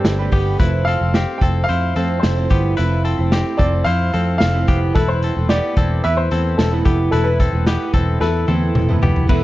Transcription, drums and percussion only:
0.05 snare loud
0.05 closed hi-hat medium
0.31 kick medium
0.31 open hi-hat medium
0.60 kick loud
0.60 closed hi-hat medium
0.87 closed hi-hat medium
1.14 snare medium
1.14 closed hi-hat medium
1.41 kick medium
1.41 closed hi-hat medium
1.68 closed hi-hat medium
1.96 closed hi-hat medium
2.23 snare medium
2.23 closed hi-hat medium
2.50 kick medium
2.50 closed hi-hat medium
2.78 closed hi-hat medium
3.05 closed hi-hat medium
3.32 snare loud
3.32 closed hi-hat medium
3.59 kick medium
3.59 closed hi-hat medium
3.86 closed hi-hat medium
4.14 closed hi-hat medium
4.40 snare loud
4.40 closed hi-hat medium
4.68 kick medium
4.68 closed hi-hat medium
4.95 kick loud
4.95 closed hi-hat medium
5.22 closed hi-hat medium
5.49 snare loud
5.49 closed hi-hat medium
5.77 kick medium
5.77 closed hi-hat medium
6.04 closed hi-hat medium
6.31 closed hi-hat medium
6.59 snare loud
6.59 closed hi-hat medium
6.85 kick loud
6.85 closed hi-hat medium
7.13 closed hi-hat medium
7.40 kick medium
7.40 closed hi-hat medium
7.67 snare medium
7.67 closed hi-hat medium
7.94 kick medium
7.94 closed hi-hat medium
8.21 snare soft
8.48 high tom medium
8.75 mid tom medium
8.89 mid tom medium
9.03 floor tom loud
9.16 floor tom medium
9.29 kick loud
9.29 crash medium

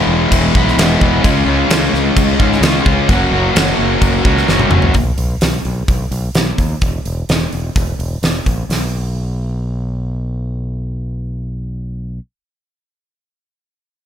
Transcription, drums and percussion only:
0.32 kick medium
0.32 crash medium
0.55 kick loud
0.68 snare soft
0.79 snare loud
0.79 crash medium
1.01 kick medium
1.24 kick medium
1.24 crash medium
1.70 snare loud
1.70 crash medium
1.94 snare soft
2.17 kick loud
2.17 crash medium
2.40 kick loud
2.52 snare soft
2.63 snare loud
2.63 crash medium
2.86 kick loud
3.09 kick loud
3.09 crash medium
3.56 snare loud
3.56 crash medium
4.02 kick loud
4.02 crash medium
4.25 kick medium
4.37 snare soft
4.48 snare medium
4.59 high tom medium
4.71 mid tom loud
4.82 floor tom medium
4.94 kick medium
4.94 open hi-hat medium
5.18 open hi-hat medium
5.41 snare loud
5.41 open hi-hat medium
5.65 open hi-hat soft
5.88 kick loud
5.88 open hi-hat medium
6.12 open hi-hat medium
6.35 snare loud
6.35 open hi-hat medium
6.58 kick medium
6.58 open hi-hat soft
6.81 kick medium
6.81 open hi-hat soft
7.05 open hi-hat soft
7.29 snare loud
7.29 open hi-hat medium
7.53 open hi-hat soft
7.76 kick loud
7.76 open hi-hat medium
8.00 open hi-hat soft
8.23 snare medium
8.23 open hi-hat medium
8.46 kick medium
8.46 open hi-hat soft
8.70 snare medium
8.70 open hi-hat medium

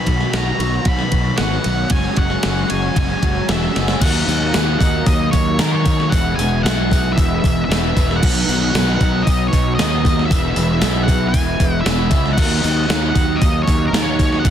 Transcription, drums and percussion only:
0.07 kick medium
0.07 ride medium
0.21 snare soft
0.33 snare loud
0.33 ride medium
0.60 ride medium
0.85 kick loud
0.85 ride medium
0.99 snare soft
1.12 kick medium
1.12 ride medium
1.38 snare loud
1.38 ride medium
1.64 ride medium
1.90 kick loud
1.90 ride loud
2.17 kick medium
2.17 ride medium
2.30 snare soft
2.43 snare loud
2.43 ride medium
2.70 ride medium
2.96 kick loud
2.96 ride medium
3.23 kick medium
3.23 ride medium
3.49 snare loud
3.49 ride medium
3.76 snare medium
3.76 ride medium
3.88 snare medium
4.01 kick loud
4.01 open hi-hat medium
4.01 crash loud
4.29 open hi-hat medium
4.54 snare loud
4.54 open hi-hat medium
4.81 kick medium
4.81 open hi-hat medium
5.06 kick loud
5.06 open hi-hat medium
5.33 kick medium
5.33 open hi-hat medium
5.59 snare loud
5.59 open hi-hat medium
5.86 kick medium
5.86 open hi-hat medium
6.00 snare soft
6.12 kick loud
6.12 open hi-hat loud
6.39 open hi-hat medium
6.66 snare loud
6.66 open hi-hat medium
6.92 kick medium
6.92 open hi-hat medium
7.18 kick loud
7.18 open hi-hat medium
7.44 kick loud
7.44 open hi-hat medium
7.72 snare loud
7.72 open hi-hat medium
7.97 kick medium
7.97 open hi-hat medium
8.11 snare soft
8.23 kick loud
8.23 crash loud
8.49 open hi-hat medium
8.75 snare loud
8.75 open hi-hat medium
9.01 kick medium
9.01 open hi-hat medium
9.27 kick loud
9.27 open hi-hat medium
9.53 kick medium
9.53 open hi-hat medium
9.79 snare loud
9.79 open hi-hat medium
10.05 kick medium
10.05 open hi-hat medium
10.19 snare soft
10.31 kick loud
10.31 open hi-hat loud
10.56 open hi-hat medium
10.82 snare loud
10.82 open hi-hat medium
11.08 kick medium
11.08 open hi-hat medium
11.34 kick loud
11.34 open hi-hat loud
11.60 kick medium
11.60 open hi-hat medium
11.86 snare loud
11.86 open hi-hat medium
12.11 kick medium
12.11 open hi-hat medium
12.26 snare soft
12.38 kick loud
12.38 crash loud
12.64 open hi-hat medium
12.90 snare loud
12.90 open hi-hat medium
13.16 kick medium
13.16 open hi-hat medium
13.42 kick loud
13.42 open hi-hat medium
13.68 kick medium
13.68 open hi-hat medium
13.94 snare loud
13.94 open hi-hat medium
14.19 kick medium
14.19 open hi-hat medium
14.32 snare soft
14.45 kick loud
14.45 open hi-hat medium

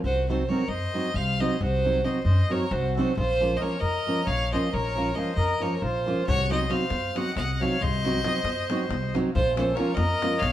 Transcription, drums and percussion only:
6.28 davul low medium
6.40 davul high soft
6.51 davul high medium
6.71 davul high medium
6.90 davul high medium
7.16 davul high medium
7.37 davul high medium
7.49 davul high soft
7.63 davul high soft
7.82 davul low medium
7.94 davul high soft
8.05 davul high medium
8.24 davul high medium
8.45 davul high medium
8.70 davul high medium
8.91 davul high medium
9.03 davul high soft
9.15 davul high medium
9.35 davul low medium
9.47 davul high soft
9.57 davul high medium
9.77 davul high medium
9.97 davul high medium
10.22 davul high medium
10.43 davul high medium

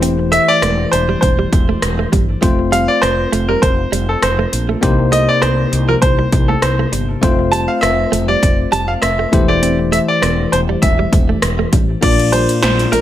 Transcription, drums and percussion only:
0.03 closed hi-hat medium
0.33 closed hi-hat medium
0.62 cross-stick loud
0.62 closed hi-hat medium
0.93 closed hi-hat medium
1.23 kick medium
1.23 closed hi-hat medium
1.53 kick medium
1.53 closed hi-hat medium
1.82 cross-stick loud
1.82 closed hi-hat medium
2.13 kick medium
2.13 closed hi-hat medium
2.43 kick loud
2.43 closed hi-hat medium
2.73 closed hi-hat medium
3.03 cross-stick loud
3.03 closed hi-hat medium
3.33 closed hi-hat medium
3.63 kick medium
3.63 closed hi-hat medium
3.93 closed hi-hat medium
4.22 cross-stick loud
4.22 closed hi-hat medium
4.53 closed hi-hat medium
4.83 kick loud
4.83 closed hi-hat medium
5.13 closed hi-hat medium
5.42 cross-stick loud
5.42 closed hi-hat medium
5.73 closed hi-hat medium
6.02 kick medium
6.02 closed hi-hat medium
6.32 kick loud
6.32 closed hi-hat medium
6.62 cross-stick loud
6.62 closed hi-hat medium
6.93 closed hi-hat medium
7.23 kick loud
7.23 closed hi-hat medium
7.53 closed hi-hat medium
7.83 cross-stick loud
7.83 closed hi-hat medium
8.13 closed hi-hat medium
8.43 kick medium
8.43 closed hi-hat medium
8.73 closed hi-hat medium
9.02 cross-stick loud
9.02 closed hi-hat medium
9.33 kick loud
9.33 closed hi-hat medium
9.63 closed hi-hat medium
9.93 closed hi-hat medium
10.23 cross-stick loud
10.23 closed hi-hat medium
10.53 closed hi-hat medium
10.83 kick medium
10.83 closed hi-hat medium
11.13 kick medium
11.13 closed hi-hat medium
11.42 cross-stick loud
11.42 closed hi-hat medium
11.73 kick medium
11.73 closed hi-hat medium
12.03 kick loud
12.03 closed hi-hat medium
12.03 crash medium
12.19 closed hi-hat soft
12.33 closed hi-hat medium
12.49 closed hi-hat medium
12.63 snare loud
12.63 closed hi-hat medium
12.79 closed hi-hat medium
12.93 closed hi-hat medium

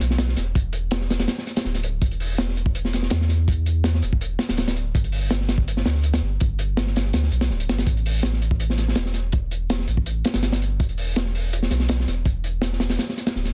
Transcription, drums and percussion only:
0.01 closed hi-hat medium
0.10 snare soft
0.18 snare loud
0.18 closed hi-hat medium
0.28 snare medium
0.37 snare soft
0.37 closed hi-hat medium
0.55 kick loud
0.55 closed hi-hat loud
0.73 closed hi-hat medium
0.91 snare loud
0.91 closed hi-hat medium
1.01 snare medium
1.10 snare loud
1.10 closed hi-hat medium
1.19 snare loud
1.19 closed hi-hat medium
1.28 snare loud
1.28 closed hi-hat medium
1.38 snare medium
1.47 snare soft
1.47 closed hi-hat medium
1.56 snare loud
1.56 closed hi-hat medium
1.65 snare medium
1.74 snare soft
1.74 closed hi-hat medium
1.83 closed hi-hat medium
2.02 kick loud
2.02 closed hi-hat medium
2.11 closed hi-hat soft
2.20 open hi-hat medium
2.38 snare loud
2.38 closed hi-hat medium
2.48 snare soft
2.57 closed hi-hat medium
2.66 kick loud
2.75 closed hi-hat medium
2.85 snare soft
2.93 snare soft
2.93 closed hi-hat medium
3.02 snare soft
3.10 snare loud
3.10 closed hi-hat medium
3.21 snare medium
3.29 snare soft
3.29 closed hi-hat medium
3.48 kick loud
3.48 closed hi-hat medium
3.66 closed hi-hat medium
3.84 snare loud
3.84 closed hi-hat medium
3.94 snare medium
4.02 closed hi-hat medium
4.13 kick loud
4.21 closed hi-hat medium
4.39 snare loud
4.39 closed hi-hat medium
4.49 snare loud
4.49 closed hi-hat medium
4.57 snare loud
4.57 closed hi-hat medium
4.68 snare loud
4.68 closed hi-hat medium
4.76 closed hi-hat medium
4.95 kick loud
4.95 closed hi-hat loud
5.04 closed hi-hat soft
5.12 open hi-hat medium
5.31 snare loud
5.31 closed hi-hat medium
5.40 snare soft
5.49 snare medium
5.49 closed hi-hat medium
5.58 kick loud
5.68 closed hi-hat medium
5.77 snare soft
5.86 snare loud
5.86 closed hi-hat medium
5.95 snare soft
6.03 closed hi-hat medium
6.13 snare loud
6.13 closed hi-hat medium
6.40 kick loud
6.40 closed hi-hat medium
6.59 closed hi-hat medium
6.77 snare loud
6.77 closed hi-hat medium
6.87 snare medium
6.96 snare loud
6.96 closed hi-hat medium
7.05 snare soft
7.13 snare loud
7.13 closed hi-hat medium
7.23 snare soft
7.32 closed hi-hat medium
7.41 snare loud
7.41 closed hi-hat medium
7.50 snare soft
7.60 closed hi-hat medium
7.69 snare loud
7.69 closed hi-hat medium
7.78 snare loud
7.78 closed hi-hat medium
7.87 kick loud
7.87 closed hi-hat loud
7.97 closed hi-hat soft
8.06 open hi-hat medium
8.23 snare loud
8.23 closed hi-hat medium
8.33 snare soft
8.42 closed hi-hat medium
8.51 kick medium
8.60 closed hi-hat loud
8.70 snare soft
8.78 snare soft
8.78 closed hi-hat medium
8.88 snare soft
8.95 snare loud
8.95 closed hi-hat loud
9.05 snare medium
9.14 snare soft
9.14 closed hi-hat medium
9.32 kick loud
9.32 closed hi-hat medium
9.51 closed hi-hat medium
9.70 snare loud
9.70 closed hi-hat medium
9.79 snare medium
9.88 closed hi-hat medium
9.97 kick loud
10.06 closed hi-hat medium
10.25 snare loud
10.25 closed hi-hat medium
10.34 snare loud
10.34 closed hi-hat medium
10.43 snare loud
10.43 closed hi-hat medium
10.52 snare loud
10.52 closed hi-hat medium
10.62 closed hi-hat medium
10.80 kick loud
10.80 closed hi-hat medium
10.89 closed hi-hat soft
10.98 open hi-hat medium
11.16 snare loud
11.16 closed hi-hat medium
11.26 snare soft
11.35 open hi-hat medium
11.53 closed hi-hat medium
11.63 snare soft
11.71 snare soft
11.71 closed hi-hat medium
11.80 snare soft
11.89 snare loud
11.89 closed hi-hat medium
12.00 snare medium
12.08 snare soft
12.08 closed hi-hat medium
12.25 kick loud
12.25 closed hi-hat medium
12.44 closed hi-hat medium
12.62 snare loud
12.62 closed hi-hat loud
12.73 snare medium
12.80 snare loud
12.80 closed hi-hat medium
12.90 snare loud
12.90 closed hi-hat medium
12.99 snare loud
12.99 closed hi-hat medium
13.09 snare medium
13.17 snare soft
13.17 closed hi-hat medium
13.27 snare loud
13.27 closed hi-hat medium
13.36 snare medium
13.45 snare soft
13.45 closed hi-hat medium

